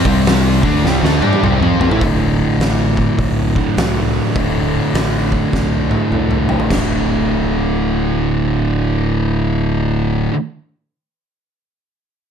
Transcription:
0.05 C2 C3 G3 C4, kick, open hi-hat
0.26 snare, open hi-hat
0.63 D2 D3 A3 D4, kick, open hi-hat
0.84 C2 C3 G3, snare
1.03 D2 D3 A3, snare
1.21 G2 G3 D4 G4, high tom
1.33 high tom
1.42 C2 C3 G3, mid tom
1.61 F2 F3 C4, mid tom
1.80 F2 F3 C4, floor tom
1.90 A2 A3 E4, floor tom
1.99 D1 D2 A2, kick, open hi-hat
2.03 D3
2.59 A1, snare, open hi-hat
2.97 kick
3.18 B1, kick, open hi-hat
3.55 D2 A2 D3, kick
3.76 C2 D2 A2 D3, snare, open hi-hat
4.36 D1 D2 A2 D3, kick, open hi-hat
4.94 A1, snare, open hi-hat
5.32 kick
5.53 B1, kick, snare
5.90 D2 A2 D3, high tom
6.10 C2 D2 A2 D3, mid tom
6.31 mid tom
6.49 floor tom
6.60 floor tom
6.69 D1 D2 A2, kick, snare, splash
6.73 D3

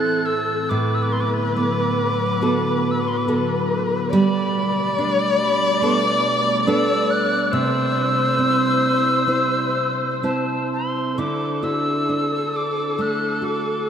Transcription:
Already playing: A2 E3 C4 E4 A4 F#6
0.26 E6
0.69 A2 D3 F#3 B3 B4 D6
0.95 E6
1.03 D6
1.12 C6
1.21 D6
1.56 B3 D6
2.42 B3 F#4 A4
2.91 E6
3.00 D6
3.08 C6
3.17 D6
3.28 B3 F#4 A4
4.11 B2 G3 A3 D5 B5
4.98 D4
5.39 B5
5.82 B3 D4 A4 D6
6.67 B3 D4 A4 E6
7.10 F#6
7.51 C3 E4 C5 E6
8.39 C4
9.27 C4 E4 C5
10.23 C4 E4 C5 A5
10.73 C6
11.17 D3 E4 A4 D6
11.63 D4 E4 F#4 E6
12.09 D4
12.56 D6
12.99 A3 F#6
13.42 F#4 D6

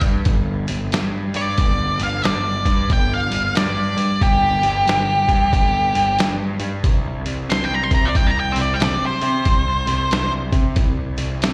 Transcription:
0.01 G2, kick, open hi-hat
0.25 G1, kick, open hi-hat
0.68 G1, open hi-hat
0.92 G2, snare, open hi-hat
1.34 G2 D5, open hi-hat
1.58 G1, kick, open hi-hat
2.00 G1 F5, open hi-hat
2.24 G1 D5, snare, open hi-hat
2.66 G2, kick, open hi-hat
2.90 G1 G5, kick, open hi-hat
3.13 F5
3.31 G1, open hi-hat
3.55 G2 D5, snare, open hi-hat
3.97 G2, open hi-hat
4.21 G1 G4, kick, open hi-hat
4.63 G1, open hi-hat
4.87 G1, snare, open hi-hat
5.29 G2, kick, open hi-hat
5.53 G1, kick, open hi-hat
5.95 G1, open hi-hat
6.19 G2, snare, open hi-hat
6.60 G2, open hi-hat
6.84 C2, kick, open hi-hat
7.26 C2, open hi-hat
7.50 C2 C6, snare, open hi-hat
7.65 G5
7.74 A#5
7.83 C6
7.91 C3 A#5, kick, open hi-hat
8.05 D5
8.15 C2 G5, kick, open hi-hat
8.27 A#5
8.40 G5
8.52 C5, open hi-hat
8.57 C2
8.62 D5
8.74 G5
8.80 C3, snare, open hi-hat
8.84 D5
9.06 C5
9.22 C3, open hi-hat
9.45 C2, kick, open hi-hat
9.87 C2, open hi-hat
10.11 C2, snare, open hi-hat
10.52 C3, kick, open hi-hat
10.76 C2, kick, open hi-hat
11.18 C2, open hi-hat
11.42 C3, snare, open hi-hat

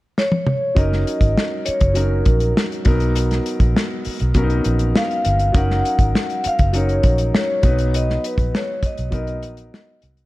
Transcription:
0.18 C#5, snare
0.32 high tom
0.47 mid tom
0.75 F#1 F#3 C#4 D#4 A#4 D#5, kick, closed hi-hat
0.93 snare
1.07 closed hi-hat
1.21 G#1, kick, closed hi-hat
1.38 snare
1.65 C#5, muted fingered electric bass stroke, closed hi-hat
1.81 F#1, kick, closed hi-hat
1.94 F#3 C#4 D#4 A#4, closed hi-hat
2.25 A#1, kick, closed hi-hat
2.40 closed hi-hat
2.57 snare
2.72 closed hi-hat
2.85 B1 F#3 B3 D#4 A#4, kick, closed hi-hat
3.00 closed hi-hat
3.15 closed hi-hat
3.31 snare, closed hi-hat
3.46 closed hi-hat
3.60 A#1, kick, closed hi-hat
3.77 snare
4.05 muted fingered electric bass stroke, open hi-hat
4.20 B1, closed hi-hat
4.34 F#3 B3 C#4 A#4, kick, closed hi-hat
4.43 D#4
4.50 closed hi-hat
4.64 A#1, closed hi-hat
4.79 closed hi-hat
4.96 F5, snare
5.11 closed hi-hat
5.25 G1, closed hi-hat
5.39 closed hi-hat
5.52 F#1 F#3 C#4 D#4 A#4, kick, closed hi-hat
5.57 F#5
5.71 snare
5.85 closed hi-hat
5.99 G#1, kick, closed hi-hat
6.15 snare
6.30 closed hi-hat
6.44 F5, muted fingered electric bass stroke, closed hi-hat
6.59 F#1, kick, closed hi-hat
6.73 F#3 C#4 D#4 A#4, closed hi-hat
6.77 C#5
6.89 closed hi-hat
7.03 A#1, kick, closed hi-hat
7.18 closed hi-hat
7.35 C#5, snare
7.62 B1 F#3 B3 D#4 B4, kick, closed hi-hat
7.79 closed hi-hat
7.94 D#5, closed hi-hat
8.10 snare
8.24 B4, closed hi-hat
8.38 A#1, kick, closed hi-hat
8.55 C#5, snare
8.83 D#5, muted fingered electric bass stroke, kick, closed hi-hat
8.97 B1, closed hi-hat
9.10 F#3 B3 D#4 A#4, kick, closed hi-hat
9.16 D#5
9.27 closed hi-hat
9.43 A#1, closed hi-hat
9.57 closed hi-hat
9.74 snare
10.02 C2, closed hi-hat
10.17 closed hi-hat

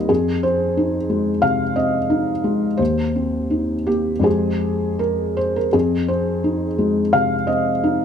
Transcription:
Already playing: D#2 G3 C4 D#4 A#4 D#5
0.09 F2 G#4
0.43 C4 C5
0.77 D#4
1.10 G#3
1.42 C3 F5
1.76 C4 D#5
2.10 D#4
2.44 G#3
2.77 D#2 C5
3.16 C4
3.50 D#4
3.87 A#3 G4
4.19 F2 G#3 C4 G4
4.24 G#4
4.99 A#4
5.37 C5
5.56 A#4
5.73 F2 G#4
6.08 C4 C5
6.44 D#4
6.78 G#3
7.13 C3 F5
7.47 C4 D#5
7.84 D#4

